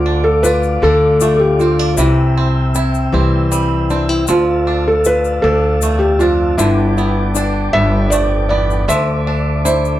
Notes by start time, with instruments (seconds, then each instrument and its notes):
Already playing: upright bass D2, nylon-string guitar D2, five-string banjo D3, felt piano F4, tonewheel organ A4 D5 F5 D6
0.06 five-string banjo D4
0.24 felt piano A4
0.43 nylon-string guitar F4, five-string banjo F4, felt piano B4, shaker
0.63 shaker
0.82 upright bass D2, nylon-string guitar D3 A3, five-string banjo D4, felt piano A4
1.20 five-string banjo A3, nylon-string guitar F4, shaker
1.36 felt piano G4 A4
1.59 nylon-string guitar A3, five-string banjo C4, felt piano F4, shaker
1.79 five-string banjo D4
1.97 upright bass C2, nylon-string guitar C3, five-string banjo E3, felt piano E4, tonewheel organ C5 E5 G5 E6, shaker
2.38 five-string banjo C4
2.75 nylon-string guitar C4, five-string banjo E4, shaker
2.94 shaker
3.12 upright bass C2, nylon-string guitar E3 G3, five-string banjo C4
3.52 five-string banjo G3, nylon-string guitar C4, shaker
3.90 five-string banjo C4, nylon-string guitar D4, shaker
4.09 nylon-string guitar E4
4.27 upright bass D2, nylon-string guitar D2, five-string banjo F3, felt piano F4, tonewheel organ D5 F5 A5 E6, shaker
4.67 five-string banjo D4
4.88 felt piano A4
5.05 nylon-string guitar F4, felt piano B4, shaker
5.24 shaker
5.42 nylon-string guitar D2, upright bass D2, five-string banjo D4, felt piano A4
5.82 nylon-string guitar E2, five-string banjo A3, shaker
5.99 felt piano G4
6.19 nylon-string guitar F2, five-string banjo D4, felt piano F4, shaker
6.57 upright bass G1, nylon-string guitar G2, five-string banjo D3, felt piano E4, tonewheel organ B4 G5 A5 D6, shaker
6.98 five-string banjo B3, shaker
7.35 nylon-string guitar D4, five-string banjo D4, shaker
7.73 upright bass G1, nylon-string guitar G2, five-string banjo B3, felt piano E5
8.10 nylon-string guitar F2, five-string banjo A3, felt piano D5, shaker
8.49 nylon-string guitar E2, five-string banjo B3, felt piano D5
8.70 shaker
8.88 upright bass D2, nylon-string guitar D2, five-string banjo F3, tonewheel organ A4 D5 E5 D6, felt piano E5, shaker
9.27 five-string banjo D4
9.65 nylon-string guitar D4, five-string banjo E4, felt piano C5, shaker
9.85 shaker